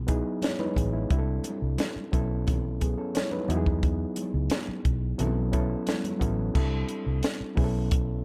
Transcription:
Already playing: fingered electric bass B1, reed electric piano F#3 B3 D#4 E4 G#4
0.07 reed electric piano F#3 B3 D#4 E4 G#4, kick, closed hi-hat
0.42 reed electric piano E4 C#5, snare, closed hi-hat, high conga
0.59 reed electric piano D#4 B4, high conga
0.76 fingered electric bass A1, reed electric piano B3 G#4, kick, closed hi-hat, high conga
0.93 reed electric piano G#3 E4
1.10 fingered electric bass C2, reed electric piano G3 C4 D4 E4 G4, kick, closed hi-hat
1.18 reed electric piano A4
1.44 closed hi-hat, muted conga
1.62 fingered electric bass C2
1.78 snare, closed hi-hat, high conga
1.96 muted fingered electric bass stroke
2.12 fingered electric bass B1, reed electric piano F#3 B3 C#4 E4 A4, kick, closed hi-hat
2.47 kick, closed hi-hat, muted conga, low conga
2.81 reed electric piano B3 G#4, kick, closed hi-hat, muted conga
2.98 reed electric piano C#4 A4
3.15 reed electric piano E4 C#5, snare, closed hi-hat, high conga
3.32 reed electric piano D#4 B4, high conga
3.48 fingered electric bass E2, reed electric piano F#3 B3 D#4 E4 F#4, closed hi-hat, high conga
3.57 reed electric piano G#4
3.66 kick
3.83 kick, closed hi-hat
4.16 closed hi-hat, muted conga
4.34 fingered electric bass C#2
4.50 snare, closed hi-hat, high conga
4.68 muted fingered electric bass stroke
4.85 fingered electric bass B1, kick, closed hi-hat
5.18 fingered electric bass B1, reed electric piano F#3 B3 C#4 E4 A4, closed hi-hat, muted conga, low conga
5.52 reed electric piano F#3 B3 C#4 E4 A4, kick, closed hi-hat
5.87 snare, closed hi-hat, high conga
6.04 closed hi-hat, high conga
6.20 fingered electric bass A1, reed electric piano F#3 B3 C#4 E4 A4, kick, closed hi-hat, high conga
6.54 fingered electric bass C2, reed electric piano G3 C4 D4 E4 A4, kick, crash
6.89 closed hi-hat
7.06 fingered electric bass C2
7.23 snare, closed hi-hat
7.40 muted fingered electric bass stroke
7.56 fingered electric bass B1, reed electric piano F#3 B3 C#4 E4 G#4, kick, open hi-hat
7.64 reed electric piano A4
7.91 kick, closed hi-hat

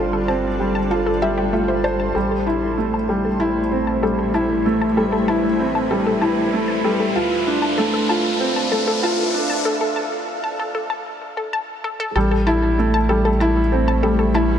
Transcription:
Already playing: analog synth bass G1, felt piano G3 C4 D4 F4, ambient pad G3 D4 A4 C5
0.13 synth arpeggio sound A4
0.28 felt piano C4, synth arpeggio sound A5
0.59 felt piano G3
0.75 synth arpeggio sound A5
0.91 felt piano F4, synth arpeggio sound A4
1.07 synth arpeggio sound A4
1.22 felt piano G3, synth arpeggio sound E5
1.38 synth arpeggio sound G4
1.53 synth arpeggio sound A3, felt piano F4
1.68 synth arpeggio sound C5
1.84 felt piano C5, synth arpeggio sound A5
2.00 synth arpeggio sound A5
2.15 analog synth bass A1, felt piano G3, ambient pad A3, synth arpeggio sound A4, riser
2.31 ambient pad E4, synth arpeggio sound A4
2.46 felt piano E4, synth arpeggio sound A5
2.78 felt piano A3
2.94 synth arpeggio sound A5
3.09 felt piano G3, synth arpeggio sound A4
3.19 ambient pad B4
3.25 synth arpeggio sound A4
3.40 felt piano E4, synth arpeggio sound A5
3.71 felt piano C4
3.87 synth arpeggio sound A5
4.02 felt piano G3, synth arpeggio sound A4
4.19 synth arpeggio sound A4
4.34 felt piano E4, synth arpeggio sound A5
4.66 felt piano A3
4.82 synth arpeggio sound A5
4.97 felt piano G3, synth arpeggio sound A4
5.12 synth arpeggio sound A4
5.28 felt piano E4, synth arpeggio sound A5
5.59 felt piano C4
5.75 synth arpeggio sound A5
5.91 felt piano G3, synth arpeggio sound A4
6.06 synth arpeggio sound A4
6.21 felt piano E4, synth arpeggio sound A5
6.53 felt piano A3
6.68 synth arpeggio sound A5
6.84 felt piano G3, synth arpeggio sound A4
7.00 synth arpeggio sound A4
7.15 analog synth bass D2, ambient pad D4, felt piano F4, synth arpeggio sound A5
7.47 felt piano D4
7.62 synth arpeggio sound A5
7.70 ambient pad A4
7.78 felt piano A3, synth arpeggio sound A4
7.94 synth arpeggio sound A4
8.09 felt piano F4, synth arpeggio sound A5
8.40 felt piano C4
8.56 synth arpeggio sound A5
8.72 felt piano A3, synth arpeggio sound A4
8.88 synth arpeggio sound A4
9.03 felt piano F4, synth arpeggio sound A5
9.34 felt piano D4
9.50 synth arpeggio sound A5
9.65 synth arpeggio sound A4
9.81 synth arpeggio sound A4
9.96 synth arpeggio sound A5
10.44 synth arpeggio sound A5
10.60 synth arpeggio sound A4
10.75 synth arpeggio sound A4
10.90 synth arpeggio sound A5
11.37 synth arpeggio sound A4
11.53 synth arpeggio sound A5
11.84 synth arpeggio sound A4
12.00 synth arpeggio sound A4
12.16 analog synth bass A1, felt piano G3, ambient pad A3, synth arpeggio sound A4
12.31 synth arpeggio sound A4
12.47 felt piano E4, synth arpeggio sound A5
12.73 ambient pad E4
12.79 felt piano A3
12.94 synth arpeggio sound A5
13.09 felt piano G3, synth arpeggio sound A4, ambient pad C5
13.25 synth arpeggio sound A4
13.37 felt piano E4, ambient pad B4, synth arpeggio sound A5
13.72 felt piano C4
13.88 synth arpeggio sound A5
14.03 felt piano G3, synth arpeggio sound A4
14.19 synth arpeggio sound A4
14.34 felt piano E4, synth arpeggio sound A5

